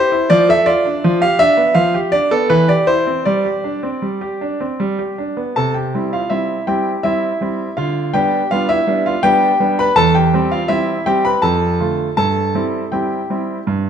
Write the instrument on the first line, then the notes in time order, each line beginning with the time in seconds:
grand piano
Already playing: G4 C5
0.12 E4
0.30 F3 D5
0.49 A4 E5
0.66 F4 D5
0.85 D4
1.04 F3
1.21 G4 F5
1.39 D4 E5
1.57 B3
1.75 F3 F5
1.94 G4
2.12 D4 D5
2.31 B3 A4
2.50 E3 B4
2.68 G4 D5
2.87 E4 C5
3.06 C4
3.25 G3 D5
3.45 G4
3.64 D4
3.83 C4
4.02 G3
4.21 G4
4.41 D4
4.61 C4
4.80 G3
4.99 G4
5.18 D4
5.37 B3
5.56 C3 A4 A5
5.74 G4 G5
5.94 G3 C4 E4
6.13 F4 F5
6.30 G3 C4 E4 E5
6.67 G3 C4 E4 G4 G5
7.03 G3 C4 E4 E5
7.41 G3 C4 E4
7.77 D3 F4 F5
8.14 G3 B3 D4 G4 G5
8.51 G3 B3 D4 F4 F5
8.69 E4 E5
8.87 G3 B3 D4
9.06 F4 F5
9.23 G3 B3 D4 G4 G5
9.60 G3 B3 D4
9.79 B4 B5
9.96 E2 A4 A5
10.15 G4 G5
10.34 G3 C4
10.51 F4 F5
10.68 G3 C4 E4 E5
11.06 G3 C4 G4 G5
11.25 B4 B5
11.42 F2 A4 A5
11.80 D3 A3 F4
12.17 G2 A4 A5
12.55 G3 C4 E4
12.92 G3 C4 E4 G4 G5
13.30 G3 C4 E4
13.67 G2